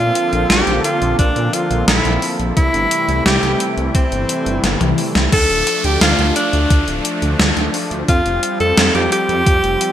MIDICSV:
0, 0, Header, 1, 6, 480
1, 0, Start_track
1, 0, Key_signature, -1, "minor"
1, 0, Tempo, 689655
1, 1787, Time_signature, 4, 2, 24, 8
1, 6906, End_track
2, 0, Start_track
2, 0, Title_t, "Alto saxophone"
2, 0, Program_c, 0, 65
2, 0, Note_on_c, 0, 65, 110
2, 347, Note_on_c, 0, 67, 102
2, 358, Note_off_c, 0, 65, 0
2, 584, Note_off_c, 0, 67, 0
2, 588, Note_on_c, 0, 65, 99
2, 811, Note_off_c, 0, 65, 0
2, 827, Note_on_c, 0, 62, 94
2, 1068, Note_on_c, 0, 65, 95
2, 1078, Note_off_c, 0, 62, 0
2, 1303, Note_off_c, 0, 65, 0
2, 1307, Note_on_c, 0, 64, 96
2, 1642, Note_off_c, 0, 64, 0
2, 1787, Note_on_c, 0, 64, 102
2, 2239, Note_off_c, 0, 64, 0
2, 2267, Note_on_c, 0, 67, 95
2, 2539, Note_off_c, 0, 67, 0
2, 2748, Note_on_c, 0, 60, 84
2, 3440, Note_off_c, 0, 60, 0
2, 3710, Note_on_c, 0, 69, 122
2, 4069, Note_on_c, 0, 67, 103
2, 4079, Note_off_c, 0, 69, 0
2, 4184, Note_off_c, 0, 67, 0
2, 4188, Note_on_c, 0, 65, 101
2, 4411, Note_off_c, 0, 65, 0
2, 4426, Note_on_c, 0, 62, 88
2, 4879, Note_off_c, 0, 62, 0
2, 5627, Note_on_c, 0, 65, 105
2, 5962, Note_off_c, 0, 65, 0
2, 5987, Note_on_c, 0, 69, 108
2, 6210, Note_off_c, 0, 69, 0
2, 6228, Note_on_c, 0, 67, 98
2, 6339, Note_off_c, 0, 67, 0
2, 6348, Note_on_c, 0, 67, 110
2, 6906, Note_off_c, 0, 67, 0
2, 6906, End_track
3, 0, Start_track
3, 0, Title_t, "Supersaw synth"
3, 0, Program_c, 1, 81
3, 0, Note_on_c, 1, 50, 79
3, 0, Note_on_c, 1, 53, 74
3, 0, Note_on_c, 1, 58, 74
3, 0, Note_on_c, 1, 60, 71
3, 0, Note_on_c, 1, 69, 88
3, 1759, Note_off_c, 1, 60, 0
3, 1760, Note_off_c, 1, 69, 0
3, 1767, Note_off_c, 1, 50, 0
3, 1767, Note_off_c, 1, 53, 0
3, 1767, Note_off_c, 1, 58, 0
3, 1787, Note_on_c, 1, 48, 80
3, 1788, Note_on_c, 1, 52, 73
3, 1788, Note_on_c, 1, 55, 72
3, 1788, Note_on_c, 1, 64, 88
3, 1789, Note_on_c, 1, 57, 73
3, 3688, Note_off_c, 1, 48, 0
3, 3688, Note_off_c, 1, 52, 0
3, 3688, Note_off_c, 1, 64, 0
3, 3689, Note_off_c, 1, 55, 0
3, 3689, Note_off_c, 1, 57, 0
3, 3707, Note_on_c, 1, 57, 73
3, 3707, Note_on_c, 1, 62, 87
3, 3708, Note_on_c, 1, 53, 80
3, 5608, Note_off_c, 1, 57, 0
3, 5608, Note_off_c, 1, 62, 0
3, 5626, Note_on_c, 1, 55, 73
3, 5626, Note_on_c, 1, 60, 91
3, 6906, Note_off_c, 1, 53, 0
3, 6906, Note_off_c, 1, 55, 0
3, 6906, Note_off_c, 1, 60, 0
3, 6906, End_track
4, 0, Start_track
4, 0, Title_t, "Detuned saw bass"
4, 0, Program_c, 2, 39
4, 0, Note_on_c, 2, 46, 78
4, 76, Note_off_c, 2, 46, 0
4, 229, Note_on_c, 2, 34, 82
4, 317, Note_off_c, 2, 34, 0
4, 347, Note_on_c, 2, 34, 100
4, 436, Note_off_c, 2, 34, 0
4, 468, Note_on_c, 2, 34, 73
4, 556, Note_off_c, 2, 34, 0
4, 707, Note_on_c, 2, 34, 83
4, 796, Note_off_c, 2, 34, 0
4, 827, Note_on_c, 2, 34, 103
4, 916, Note_off_c, 2, 34, 0
4, 947, Note_on_c, 2, 46, 79
4, 1036, Note_off_c, 2, 46, 0
4, 1187, Note_on_c, 2, 34, 82
4, 1276, Note_off_c, 2, 34, 0
4, 1306, Note_on_c, 2, 34, 102
4, 1395, Note_off_c, 2, 34, 0
4, 1427, Note_on_c, 2, 34, 77
4, 1516, Note_off_c, 2, 34, 0
4, 1667, Note_on_c, 2, 34, 80
4, 1756, Note_off_c, 2, 34, 0
4, 1787, Note_on_c, 2, 36, 103
4, 1876, Note_off_c, 2, 36, 0
4, 1908, Note_on_c, 2, 31, 77
4, 1996, Note_off_c, 2, 31, 0
4, 2146, Note_on_c, 2, 36, 81
4, 2236, Note_off_c, 2, 36, 0
4, 2266, Note_on_c, 2, 36, 99
4, 2355, Note_off_c, 2, 36, 0
4, 2386, Note_on_c, 2, 36, 75
4, 2475, Note_off_c, 2, 36, 0
4, 2625, Note_on_c, 2, 36, 83
4, 2715, Note_off_c, 2, 36, 0
4, 2747, Note_on_c, 2, 36, 102
4, 2836, Note_off_c, 2, 36, 0
4, 2866, Note_on_c, 2, 31, 78
4, 2955, Note_off_c, 2, 31, 0
4, 3106, Note_on_c, 2, 31, 84
4, 3195, Note_off_c, 2, 31, 0
4, 3226, Note_on_c, 2, 31, 104
4, 3315, Note_off_c, 2, 31, 0
4, 3346, Note_on_c, 2, 36, 79
4, 3436, Note_off_c, 2, 36, 0
4, 3587, Note_on_c, 2, 36, 80
4, 3676, Note_off_c, 2, 36, 0
4, 3707, Note_on_c, 2, 38, 103
4, 3796, Note_off_c, 2, 38, 0
4, 3826, Note_on_c, 2, 26, 78
4, 3915, Note_off_c, 2, 26, 0
4, 4067, Note_on_c, 2, 38, 82
4, 4156, Note_off_c, 2, 38, 0
4, 4186, Note_on_c, 2, 38, 102
4, 4275, Note_off_c, 2, 38, 0
4, 4306, Note_on_c, 2, 38, 74
4, 4396, Note_off_c, 2, 38, 0
4, 4546, Note_on_c, 2, 38, 82
4, 4635, Note_off_c, 2, 38, 0
4, 4666, Note_on_c, 2, 38, 103
4, 4755, Note_off_c, 2, 38, 0
4, 4786, Note_on_c, 2, 26, 81
4, 4875, Note_off_c, 2, 26, 0
4, 5027, Note_on_c, 2, 38, 80
4, 5116, Note_off_c, 2, 38, 0
4, 5147, Note_on_c, 2, 38, 101
4, 5236, Note_off_c, 2, 38, 0
4, 5267, Note_on_c, 2, 38, 77
4, 5356, Note_off_c, 2, 38, 0
4, 5507, Note_on_c, 2, 38, 82
4, 5596, Note_off_c, 2, 38, 0
4, 5627, Note_on_c, 2, 41, 103
4, 5716, Note_off_c, 2, 41, 0
4, 5747, Note_on_c, 2, 29, 76
4, 5836, Note_off_c, 2, 29, 0
4, 5988, Note_on_c, 2, 41, 84
4, 6076, Note_off_c, 2, 41, 0
4, 6106, Note_on_c, 2, 41, 102
4, 6196, Note_off_c, 2, 41, 0
4, 6227, Note_on_c, 2, 41, 75
4, 6316, Note_off_c, 2, 41, 0
4, 6467, Note_on_c, 2, 41, 86
4, 6556, Note_off_c, 2, 41, 0
4, 6587, Note_on_c, 2, 41, 102
4, 6676, Note_off_c, 2, 41, 0
4, 6706, Note_on_c, 2, 29, 79
4, 6795, Note_off_c, 2, 29, 0
4, 6906, End_track
5, 0, Start_track
5, 0, Title_t, "Downlifter"
5, 0, Program_c, 3, 103
5, 3707, Note_on_c, 3, 60, 77
5, 6906, Note_off_c, 3, 60, 0
5, 6906, End_track
6, 0, Start_track
6, 0, Title_t, "Drums"
6, 107, Note_on_c, 9, 42, 89
6, 177, Note_off_c, 9, 42, 0
6, 228, Note_on_c, 9, 42, 39
6, 297, Note_off_c, 9, 42, 0
6, 347, Note_on_c, 9, 38, 116
6, 347, Note_on_c, 9, 42, 64
6, 417, Note_off_c, 9, 38, 0
6, 417, Note_off_c, 9, 42, 0
6, 467, Note_on_c, 9, 42, 39
6, 537, Note_off_c, 9, 42, 0
6, 587, Note_on_c, 9, 42, 90
6, 657, Note_off_c, 9, 42, 0
6, 708, Note_on_c, 9, 42, 37
6, 777, Note_off_c, 9, 42, 0
6, 827, Note_on_c, 9, 36, 107
6, 828, Note_on_c, 9, 42, 64
6, 897, Note_off_c, 9, 36, 0
6, 897, Note_off_c, 9, 42, 0
6, 947, Note_on_c, 9, 42, 38
6, 1017, Note_off_c, 9, 42, 0
6, 1067, Note_on_c, 9, 42, 88
6, 1137, Note_off_c, 9, 42, 0
6, 1188, Note_on_c, 9, 42, 39
6, 1257, Note_off_c, 9, 42, 0
6, 1308, Note_on_c, 9, 38, 114
6, 1308, Note_on_c, 9, 42, 64
6, 1377, Note_off_c, 9, 38, 0
6, 1377, Note_off_c, 9, 42, 0
6, 1427, Note_on_c, 9, 42, 37
6, 1496, Note_off_c, 9, 42, 0
6, 1547, Note_on_c, 9, 46, 79
6, 1616, Note_off_c, 9, 46, 0
6, 1667, Note_on_c, 9, 42, 39
6, 1737, Note_off_c, 9, 42, 0
6, 1787, Note_on_c, 9, 36, 118
6, 1787, Note_on_c, 9, 42, 68
6, 1856, Note_off_c, 9, 36, 0
6, 1857, Note_off_c, 9, 42, 0
6, 1907, Note_on_c, 9, 42, 40
6, 1977, Note_off_c, 9, 42, 0
6, 2027, Note_on_c, 9, 42, 98
6, 2096, Note_off_c, 9, 42, 0
6, 2148, Note_on_c, 9, 42, 41
6, 2217, Note_off_c, 9, 42, 0
6, 2268, Note_on_c, 9, 38, 116
6, 2268, Note_on_c, 9, 42, 68
6, 2337, Note_off_c, 9, 38, 0
6, 2337, Note_off_c, 9, 42, 0
6, 2387, Note_on_c, 9, 42, 40
6, 2457, Note_off_c, 9, 42, 0
6, 2507, Note_on_c, 9, 42, 92
6, 2577, Note_off_c, 9, 42, 0
6, 2628, Note_on_c, 9, 42, 38
6, 2697, Note_off_c, 9, 42, 0
6, 2747, Note_on_c, 9, 36, 108
6, 2747, Note_on_c, 9, 42, 67
6, 2816, Note_off_c, 9, 36, 0
6, 2817, Note_off_c, 9, 42, 0
6, 2867, Note_on_c, 9, 42, 39
6, 2937, Note_off_c, 9, 42, 0
6, 2987, Note_on_c, 9, 42, 91
6, 3056, Note_off_c, 9, 42, 0
6, 3107, Note_on_c, 9, 42, 41
6, 3176, Note_off_c, 9, 42, 0
6, 3227, Note_on_c, 9, 38, 61
6, 3227, Note_on_c, 9, 42, 67
6, 3297, Note_off_c, 9, 38, 0
6, 3297, Note_off_c, 9, 42, 0
6, 3346, Note_on_c, 9, 42, 41
6, 3346, Note_on_c, 9, 48, 61
6, 3416, Note_off_c, 9, 42, 0
6, 3416, Note_off_c, 9, 48, 0
6, 3466, Note_on_c, 9, 46, 79
6, 3535, Note_off_c, 9, 46, 0
6, 3586, Note_on_c, 9, 38, 84
6, 3586, Note_on_c, 9, 42, 41
6, 3656, Note_off_c, 9, 38, 0
6, 3656, Note_off_c, 9, 42, 0
6, 3706, Note_on_c, 9, 42, 70
6, 3706, Note_on_c, 9, 49, 104
6, 3707, Note_on_c, 9, 36, 124
6, 3775, Note_off_c, 9, 42, 0
6, 3775, Note_off_c, 9, 49, 0
6, 3776, Note_off_c, 9, 36, 0
6, 3826, Note_on_c, 9, 42, 41
6, 3896, Note_off_c, 9, 42, 0
6, 3946, Note_on_c, 9, 42, 98
6, 4015, Note_off_c, 9, 42, 0
6, 4066, Note_on_c, 9, 42, 43
6, 4136, Note_off_c, 9, 42, 0
6, 4185, Note_on_c, 9, 38, 120
6, 4185, Note_on_c, 9, 42, 72
6, 4255, Note_off_c, 9, 38, 0
6, 4255, Note_off_c, 9, 42, 0
6, 4306, Note_on_c, 9, 42, 42
6, 4375, Note_off_c, 9, 42, 0
6, 4426, Note_on_c, 9, 42, 97
6, 4495, Note_off_c, 9, 42, 0
6, 4546, Note_on_c, 9, 42, 41
6, 4616, Note_off_c, 9, 42, 0
6, 4666, Note_on_c, 9, 36, 120
6, 4666, Note_on_c, 9, 42, 70
6, 4736, Note_off_c, 9, 36, 0
6, 4736, Note_off_c, 9, 42, 0
6, 4786, Note_on_c, 9, 42, 42
6, 4856, Note_off_c, 9, 42, 0
6, 4906, Note_on_c, 9, 42, 96
6, 4975, Note_off_c, 9, 42, 0
6, 5027, Note_on_c, 9, 42, 43
6, 5097, Note_off_c, 9, 42, 0
6, 5147, Note_on_c, 9, 38, 125
6, 5147, Note_on_c, 9, 42, 71
6, 5217, Note_off_c, 9, 38, 0
6, 5217, Note_off_c, 9, 42, 0
6, 5267, Note_on_c, 9, 42, 42
6, 5336, Note_off_c, 9, 42, 0
6, 5386, Note_on_c, 9, 46, 82
6, 5456, Note_off_c, 9, 46, 0
6, 5507, Note_on_c, 9, 42, 42
6, 5577, Note_off_c, 9, 42, 0
6, 5627, Note_on_c, 9, 36, 127
6, 5627, Note_on_c, 9, 42, 71
6, 5696, Note_off_c, 9, 36, 0
6, 5697, Note_off_c, 9, 42, 0
6, 5747, Note_on_c, 9, 42, 42
6, 5816, Note_off_c, 9, 42, 0
6, 5867, Note_on_c, 9, 42, 101
6, 5936, Note_off_c, 9, 42, 0
6, 5987, Note_on_c, 9, 42, 43
6, 6057, Note_off_c, 9, 42, 0
6, 6107, Note_on_c, 9, 38, 127
6, 6107, Note_on_c, 9, 42, 70
6, 6177, Note_off_c, 9, 38, 0
6, 6177, Note_off_c, 9, 42, 0
6, 6227, Note_on_c, 9, 42, 43
6, 6297, Note_off_c, 9, 42, 0
6, 6348, Note_on_c, 9, 42, 99
6, 6418, Note_off_c, 9, 42, 0
6, 6468, Note_on_c, 9, 42, 40
6, 6537, Note_off_c, 9, 42, 0
6, 6587, Note_on_c, 9, 36, 126
6, 6588, Note_on_c, 9, 42, 71
6, 6657, Note_off_c, 9, 36, 0
6, 6657, Note_off_c, 9, 42, 0
6, 6708, Note_on_c, 9, 42, 42
6, 6777, Note_off_c, 9, 42, 0
6, 6827, Note_on_c, 9, 42, 97
6, 6897, Note_off_c, 9, 42, 0
6, 6906, End_track
0, 0, End_of_file